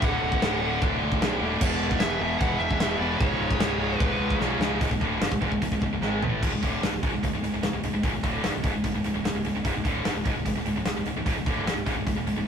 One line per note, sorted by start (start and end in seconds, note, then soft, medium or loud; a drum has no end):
0.01 0.20 D1 medium
0.01 0.41 D2 loud
0.01 0.42 A2 loud
0.01 0.43 D3 loud
0.01 0.79 F#5 loud
0.01 kick loud
0.01 china medium
0.21 0.39 D1 medium
0.32 kick medium
0.41 0.77 D1 medium
0.41 0.61 D2 medium
0.41 0.62 A2 medium
0.41 0.62 D3 loud
0.41 snare loud
0.41 china medium
0.63 0.81 D2 medium
0.63 0.82 A2 medium
0.63 0.82 D3 loud
0.82 1.00 D1 loud
0.82 1.21 D2 medium
0.82 1.21 A2 loud
0.82 1.22 D3 loud
0.82 kick loud
0.82 china medium
1.02 1.20 D2 medium
1.12 kick medium
1.21 1.40 B1 medium
1.21 1.41 D2 medium
1.21 1.41 A2 medium
1.21 1.42 D3 medium
1.21 snare loud
1.21 china medium
1.41 1.59 D#1 medium
1.41 1.61 D2 medium
1.41 1.61 A2 medium
1.41 1.61 D3 loud
1.61 1.97 E1 medium
1.61 2.01 E2 medium
1.61 2.01 B2 loud
1.61 2.02 E3 loud
1.61 1.99 D5 loud
1.61 kick loud
1.61 china medium
1.61 crash loud
1.91 kick medium
2.00 2.19 E1 medium
2.00 2.20 E2 medium
2.00 2.21 B2 medium
2.00 2.22 E3 medium
2.00 2.42 E5 medium
2.00 snare loud
2.00 china medium
2.21 2.39 E1 medium
2.21 2.40 E2 medium
2.21 2.40 B2 loud
2.21 2.41 E3 loud
2.38 2.59 E1 loud
2.38 2.79 E2 medium
2.38 2.80 B2 loud
2.38 2.81 E3 loud
2.38 2.58 F#5 loud
2.38 kick loud
2.38 china medium
2.59 2.79 E1 medium
2.59 2.99 E5 loud
2.71 kick medium
2.80 2.98 E1 medium
2.80 2.99 E2 medium
2.80 2.99 B2 medium
2.80 3.01 E3 loud
2.80 snare loud
2.80 china medium
2.99 3.18 E1 medium
2.99 3.19 E2 medium
2.99 3.20 B2 medium
2.99 3.21 E3 loud
2.99 3.17 D5 medium
3.17 3.39 C#1 medium
3.17 3.59 C#2 loud
3.17 3.59 G#2 loud
3.17 3.60 C#3 loud
3.17 3.98 C#5 medium
3.17 kick loud
3.17 china medium
3.40 3.58 C#1 medium
3.51 kick loud
3.59 3.96 C#1 medium
3.59 3.79 C#2 medium
3.59 3.80 G#2 medium
3.59 3.80 C#3 medium
3.59 snare loud
3.59 china medium
3.81 4.00 C#2 medium
3.81 4.00 G#2 medium
3.81 4.01 C#3 loud
3.98 4.18 C#1 loud
3.98 4.39 C#2 loud
3.98 4.40 G#2 loud
3.98 4.41 C#3 loud
3.98 4.35 B4 medium
3.98 kick loud
3.98 china medium
4.18 4.38 C#2 medium
4.30 kick medium
4.38 4.58 B1 medium
4.38 4.60 C#2 medium
4.38 4.61 G#2 medium
4.38 4.61 C#3 medium
4.38 snare medium
4.59 4.78 C#2 medium
4.59 4.80 C#2 medium
4.59 4.80 G#2 medium
4.59 4.81 C#3 medium
4.59 snare loud
4.81 4.90 C#1 medium
4.81 4.90 C#2 medium
4.81 4.91 G#2 loud
4.81 kick loud
4.81 open hi-hat medium
4.91 5.00 C#1 medium
4.91 5.01 C#2 medium
4.91 5.02 G#2 medium
4.91 kick medium
5.01 5.20 D1 medium
5.01 5.21 D2 medium
5.01 5.21 A2 loud
5.01 5.21 D3 loud
5.01 kick medium
5.21 5.30 G1 medium
5.21 5.31 G2 medium
5.21 5.31 D3 medium
5.21 snare loud
5.21 open hi-hat medium
5.32 5.41 C#1 medium
5.32 5.41 C#2 medium
5.32 5.42 G#2 medium
5.32 kick loud
5.42 5.51 C#1 loud
5.42 5.51 C#2 medium
5.42 5.52 G#2 loud
5.42 kick medium
5.52 5.61 C#1 medium
5.52 5.61 C#2 medium
5.52 5.62 G#2 medium
5.52 kick medium
5.62 5.71 C#1 medium
5.62 5.71 C#2 medium
5.62 5.72 G#2 medium
5.62 kick medium
5.62 open hi-hat medium
5.72 5.81 C#1 medium
5.72 5.82 C#2 medium
5.72 5.82 G#2 medium
5.72 kick medium
5.81 5.91 C#1 medium
5.81 5.92 C#2 medium
5.81 5.92 G#2 medium
5.81 kick medium
5.92 6.00 C#1 medium
5.92 6.02 C#2 medium
5.92 6.02 G#2 medium
6.01 6.20 G#1 loud
6.01 6.22 G#2 medium
6.01 6.22 D#3 loud
6.01 6.22 G#3 medium
6.01 snare medium
6.22 6.41 A1 medium
6.22 6.42 A2 medium
6.22 6.42 E3 medium
6.22 6.42 A3 medium
6.22 floor tom medium
6.42 6.51 C#1 medium
6.42 6.52 C#2 medium
6.42 6.52 G#2 medium
6.42 kick loud
6.42 crash loud
6.52 6.61 C#1 medium
6.52 6.63 C#2 medium
6.52 6.63 G#2 medium
6.63 6.81 D1 medium
6.63 6.82 D2 medium
6.63 6.82 A2 medium
6.63 6.82 D3 medium
6.63 kick medium
6.63 open hi-hat soft
6.81 6.91 G1 medium
6.81 6.92 G2 medium
6.81 6.92 D3 medium
6.81 snare loud
6.81 open hi-hat medium
6.92 7.02 C#1 medium
6.92 7.02 C#2 medium
6.92 7.02 G#2 medium
7.03 7.12 C#1 medium
7.03 7.12 C#2 medium
7.03 7.12 G#2 medium
7.03 kick medium
7.03 open hi-hat soft
7.13 7.22 C#1 medium
7.13 7.23 C#2 medium
7.13 7.23 G#2 medium
7.23 7.32 C#1 medium
7.23 7.33 C#2 medium
7.23 7.33 G#2 medium
7.23 kick medium
7.23 open hi-hat medium
7.33 7.42 C#1 medium
7.33 7.42 C#2 medium
7.33 7.43 G#2 medium
7.43 7.52 C#1 medium
7.43 7.52 C#2 medium
7.43 7.53 G#2 medium
7.43 open hi-hat soft
7.54 7.62 C#1 medium
7.54 7.63 C#2 medium
7.54 7.63 G#2 medium
7.63 7.72 C#1 medium
7.63 7.73 C#2 medium
7.63 7.73 G#2 medium
7.63 snare medium
7.63 open hi-hat medium
7.73 7.82 C#1 medium
7.73 7.83 C#2 medium
7.73 7.83 G#2 medium
7.83 7.92 C#1 medium
7.83 7.93 C#2 medium
7.83 7.93 G#2 medium
7.83 open hi-hat medium
7.94 8.02 C#1 medium
7.94 8.03 C#2 medium
7.94 8.03 G#2 medium
8.03 8.12 C#1 medium
8.03 8.13 C#2 medium
8.03 8.13 G#2 loud
8.03 kick loud
8.03 open hi-hat medium
8.13 8.23 C#1 medium
8.13 8.23 C#2 medium
8.13 8.24 G#2 medium
8.23 8.42 D1 medium
8.23 8.43 D2 medium
8.23 8.43 A2 medium
8.23 8.43 D3 medium
8.23 kick medium
8.23 open hi-hat medium
8.44 8.53 G1 medium
8.44 8.54 G2 medium
8.44 8.54 D3 medium
8.44 snare loud
8.44 open hi-hat medium
8.55 8.63 C#1 medium
8.55 8.64 C#2 medium
8.55 8.65 G#2 medium
8.64 8.73 C#1 medium
8.64 8.74 C#2 medium
8.64 8.74 G#2 medium
8.64 kick loud
8.64 open hi-hat medium
8.75 8.84 C#1 medium
8.75 8.84 C#2 medium
8.75 8.84 G#2 medium
8.84 8.93 C#1 medium
8.84 8.94 C#2 medium
8.84 8.94 G#2 medium
8.84 kick medium
8.84 open hi-hat medium
8.95 9.04 C#1 medium
8.95 9.04 C#2 medium
8.95 9.05 G#2 medium
9.04 9.14 C#1 medium
9.04 9.14 C#2 medium
9.04 9.15 G#2 medium
9.04 open hi-hat medium
9.14 9.23 C#1 medium
9.14 9.25 C#2 medium
9.14 9.24 G#2 medium
9.23 9.33 C#1 medium
9.23 9.34 C#2 medium
9.23 9.35 G#2 medium
9.23 snare loud
9.23 open hi-hat medium
9.34 9.43 C#1 medium
9.34 9.45 C#2 medium
9.34 9.45 G#2 medium
9.45 9.53 C#1 medium
9.45 9.55 C#2 medium
9.45 9.55 G#2 medium
9.45 open hi-hat soft
9.54 9.63 C#1 medium
9.54 9.64 C#2 medium
9.54 9.65 G#2 medium
9.65 9.74 C#1 medium
9.65 9.74 C#2 medium
9.65 9.74 G#2 medium
9.65 kick loud
9.65 open hi-hat medium
9.75 9.84 C#1 medium
9.75 9.85 C#2 medium
9.75 9.86 G#2 medium
9.85 10.03 D1 medium
9.85 10.04 D2 medium
9.85 10.05 A2 medium
9.85 10.05 D3 medium
9.85 kick medium
9.85 open hi-hat medium
10.05 10.13 G1 medium
10.05 10.15 G2 medium
10.05 10.15 D3 medium
10.05 snare loud
10.05 open hi-hat medium
10.14 10.24 C#1 medium
10.14 10.25 C#2 medium
10.14 10.26 G#2 medium
10.25 10.34 C#1 medium
10.25 10.35 C#2 medium
10.25 10.35 G#2 medium
10.25 kick loud
10.25 open hi-hat soft
10.34 10.44 C#1 medium
10.34 10.46 C#2 medium
10.34 10.46 G#2 medium
10.46 10.54 C#1 medium
10.46 10.56 C#2 medium
10.46 10.56 G#2 medium
10.46 kick medium
10.46 open hi-hat medium
10.55 10.64 C#1 medium
10.55 10.66 C#2 medium
10.55 10.67 G#2 medium
10.65 10.75 C#1 medium
10.65 10.76 C#2 medium
10.65 10.77 G#2 medium
10.65 open hi-hat medium
10.76 10.85 C#1 medium
10.76 10.86 C#2 medium
10.76 10.86 G#2 medium
10.85 10.95 C#1 medium
10.85 10.96 C#2 medium
10.85 10.96 G#2 medium
10.85 snare loud
10.85 open hi-hat medium
10.96 11.05 C#1 medium
10.96 11.06 C#2 medium
10.96 11.06 G#2 medium
11.06 11.15 C#1 medium
11.06 11.15 C#2 medium
11.06 11.16 G#2 medium
11.06 open hi-hat medium
11.16 11.25 C#1 medium
11.16 11.25 C#2 medium
11.16 11.26 G#2 medium
11.26 11.34 C#1 medium
11.26 11.35 C#2 medium
11.26 11.36 G#2 loud
11.26 kick loud
11.26 open hi-hat medium
11.34 11.44 C#1 medium
11.34 11.45 C#2 medium
11.34 11.46 G#2 medium
11.46 11.63 D1 medium
11.46 11.65 D2 medium
11.46 11.66 A2 medium
11.46 11.65 D3 medium
11.46 kick medium
11.46 open hi-hat soft
11.64 11.73 G1 medium
11.64 11.74 G2 medium
11.64 11.75 D3 loud
11.64 snare loud
11.64 open hi-hat medium
11.73 11.84 C#1 medium
11.73 11.85 C#2 medium
11.73 11.86 G#2 medium
11.86 11.94 C#1 medium
11.86 11.95 C#2 medium
11.86 11.96 G#2 medium
11.86 kick medium
11.86 open hi-hat medium
11.94 12.05 C#1 medium
11.94 12.05 C#2 medium
11.94 12.06 G#2 medium
12.06 12.14 C#1 medium
12.06 12.15 C#2 medium
12.06 12.15 G#2 medium
12.06 kick medium
12.06 open hi-hat medium
12.15 12.24 C#1 medium
12.15 12.25 C#2 medium
12.15 12.25 G#2 medium
12.25 12.35 C#1 medium
12.25 12.35 C#2 medium
12.25 12.35 G#2 medium
12.25 open hi-hat medium
12.36 12.45 C#1 medium
12.36 12.45 C#2 medium
12.36 12.45 G#2 medium